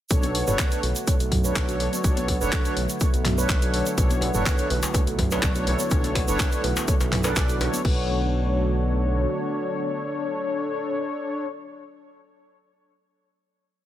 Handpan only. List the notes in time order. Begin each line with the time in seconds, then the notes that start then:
0.23 B3
0.48 B4
0.59 A3
0.83 F#4
1.07 A3
1.32 F#3
1.44 B4
1.69 F#4
1.93 B3
2.17 B3
2.41 B4
2.53 A3
2.77 F#4
3.01 A3
3.25 F#3
3.38 B4
3.62 F#4
3.86 B3
4.10 B3
4.35 B4
4.46 A3
4.70 F#4
4.94 A3
5.18 F#3
5.31 B4
5.56 F#4
5.80 B3
6.04 B3
6.28 B4
6.40 A3
6.64 F#4
6.88 A3
7.12 F#3
7.25 B4
7.49 F#4
7.73 B3
7.85 B3